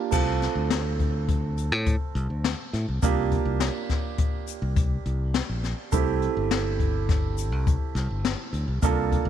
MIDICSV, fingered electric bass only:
0, 0, Header, 1, 2, 480
1, 0, Start_track
1, 0, Tempo, 580833
1, 96, Time_signature, 5, 2, 24, 8
1, 7680, End_track
2, 0, Start_track
2, 0, Title_t, "Fingered electric bass"
2, 0, Program_c, 0, 33
2, 102, Note_on_c, 0, 36, 94
2, 385, Note_off_c, 0, 36, 0
2, 458, Note_on_c, 0, 38, 83
2, 1420, Note_off_c, 0, 38, 0
2, 1420, Note_on_c, 0, 45, 73
2, 1609, Note_off_c, 0, 45, 0
2, 1778, Note_on_c, 0, 36, 88
2, 1873, Note_off_c, 0, 36, 0
2, 1900, Note_on_c, 0, 38, 72
2, 2089, Note_off_c, 0, 38, 0
2, 2259, Note_on_c, 0, 45, 79
2, 2354, Note_off_c, 0, 45, 0
2, 2384, Note_on_c, 0, 36, 75
2, 2477, Note_off_c, 0, 36, 0
2, 2501, Note_on_c, 0, 36, 97
2, 2785, Note_off_c, 0, 36, 0
2, 2854, Note_on_c, 0, 36, 87
2, 3046, Note_off_c, 0, 36, 0
2, 3817, Note_on_c, 0, 36, 78
2, 4103, Note_off_c, 0, 36, 0
2, 4179, Note_on_c, 0, 36, 86
2, 4464, Note_off_c, 0, 36, 0
2, 4541, Note_on_c, 0, 34, 75
2, 4730, Note_off_c, 0, 34, 0
2, 4897, Note_on_c, 0, 36, 94
2, 5182, Note_off_c, 0, 36, 0
2, 5262, Note_on_c, 0, 31, 81
2, 6216, Note_off_c, 0, 31, 0
2, 6216, Note_on_c, 0, 36, 80
2, 6406, Note_off_c, 0, 36, 0
2, 6570, Note_on_c, 0, 36, 92
2, 6668, Note_off_c, 0, 36, 0
2, 6699, Note_on_c, 0, 31, 76
2, 6888, Note_off_c, 0, 31, 0
2, 7047, Note_on_c, 0, 38, 77
2, 7146, Note_off_c, 0, 38, 0
2, 7172, Note_on_c, 0, 36, 78
2, 7269, Note_off_c, 0, 36, 0
2, 7293, Note_on_c, 0, 36, 94
2, 7578, Note_off_c, 0, 36, 0
2, 7645, Note_on_c, 0, 36, 90
2, 7680, Note_off_c, 0, 36, 0
2, 7680, End_track
0, 0, End_of_file